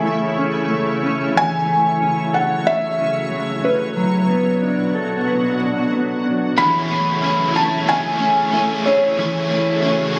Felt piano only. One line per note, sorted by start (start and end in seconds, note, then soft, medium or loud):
1.37 2.37 G#5 loud
2.34 2.67 F#5 medium
2.67 3.67 E5 loud
3.65 5.56 B4 medium
6.58 7.58 B5 loud
7.56 7.89 A5 medium
7.89 8.89 G#5 loud
8.86 10.19 C#5 medium